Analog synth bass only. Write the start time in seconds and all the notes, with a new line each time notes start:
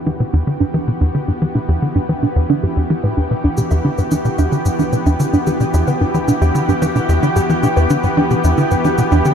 0.06 E3
0.20 B2
0.33 E2
0.47 D3
0.60 G2
0.74 E3
0.88 B2
1.01 E2
1.15 D3
1.28 G2
1.42 E3
1.55 B2
1.68 E2
1.82 D3
1.95 G2
2.09 E3
2.23 B2
2.36 E2
2.49 D3
2.63 G2
2.77 E2
2.90 E3
3.04 A2
3.17 E2
3.31 B2
3.44 E2
3.58 B2
3.71 E2
3.85 D3
3.98 G2
4.11 E3
4.25 B2
4.38 E2
4.52 D3
4.65 G2
4.79 E3
4.92 B2
5.06 E2
5.20 D3
5.33 G2
5.47 E3
5.60 B2
5.74 E2
5.87 D3
6.01 G2
6.14 E3
6.28 B2
6.41 E2
6.55 D3
6.68 G2
6.82 E3
6.95 B2
7.09 E2
7.23 D3
7.36 G2
7.49 E3
7.63 B2
7.77 E2
7.90 D3
8.04 G2
8.17 E3
8.31 B2
8.44 E2
8.58 D3
8.71 G2
8.85 E3
8.98 B2
9.12 E2
9.25 D3